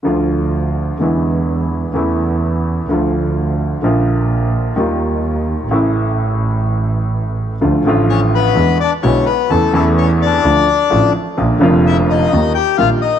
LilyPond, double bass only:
\new Staff \with { instrumentName = "Double bass" } { \clef bass \time 4/4 \key d \minor \tempo 4 = 127 d,2 e,2 | e,2 d,2 | bes,,2 ees,2 | a,,1 |
d,8 a,,4. e,8 r8 b,,8 r8 | e,8 e,4. d,8 r8 a,,8 r8 | bes,,8 f,,4. ees,8 r8 bes,,8 r8 | }